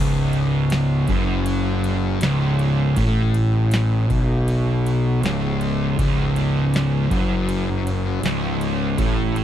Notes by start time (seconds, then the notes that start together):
Already playing: C#1 C#2
0.33 ride
0.70 snare, ride
1.07 F#1 F#2, kick, ride
1.46 ride
1.84 ride
2.21 C#1 C#2, snare, ride
2.59 ride
2.96 A1 A2, kick, ride
3.34 ride
3.71 snare, ride
4.10 B1 B2, kick, ride
4.48 ride
4.86 ride
5.23 C#1 C#2, snare, ride
5.61 ride
5.98 C#1 C#2, kick, ride
6.36 ride
6.74 snare, ride
7.11 F#1 F#2, kick, ride
7.49 ride
7.87 ride
8.23 C#1 C#2, snare, ride
8.45 snare
8.61 ride
8.98 A1 A2, kick, ride
9.36 ride